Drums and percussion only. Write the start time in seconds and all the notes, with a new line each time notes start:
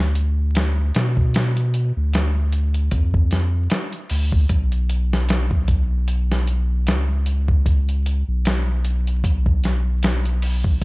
0.00 snare
0.15 closed hi-hat
0.55 snare, closed hi-hat
0.95 snare, closed hi-hat
1.17 kick
1.34 snare, closed hi-hat
1.57 closed hi-hat
1.74 closed hi-hat
2.13 snare, closed hi-hat
2.52 closed hi-hat
2.74 closed hi-hat
2.91 kick, closed hi-hat
3.14 kick
3.31 snare, closed hi-hat
3.70 snare, closed hi-hat
3.93 closed hi-hat
4.10 open hi-hat
4.32 kick
4.49 kick, closed hi-hat
4.72 closed hi-hat
4.89 closed hi-hat
5.13 snare
5.29 snare, closed hi-hat
5.51 kick
5.68 kick, closed hi-hat
6.08 closed hi-hat
6.32 snare
6.47 closed hi-hat
6.87 snare, closed hi-hat
7.26 closed hi-hat
7.48 kick
7.66 kick, closed hi-hat
7.89 closed hi-hat
8.06 closed hi-hat
8.45 snare, closed hi-hat
8.85 closed hi-hat
9.07 closed hi-hat
9.24 kick, closed hi-hat
9.46 kick
9.64 snare, closed hi-hat
10.03 snare, closed hi-hat
10.25 closed hi-hat
10.42 open hi-hat
10.64 kick